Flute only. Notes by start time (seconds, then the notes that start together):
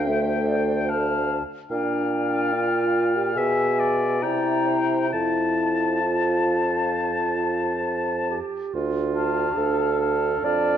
0.08 E5
0.49 D5
0.88 A5
1.70 G5
3.35 G#5
4.22 A#5
5.12 A5
9.15 A5
10.00 A5
10.43 A5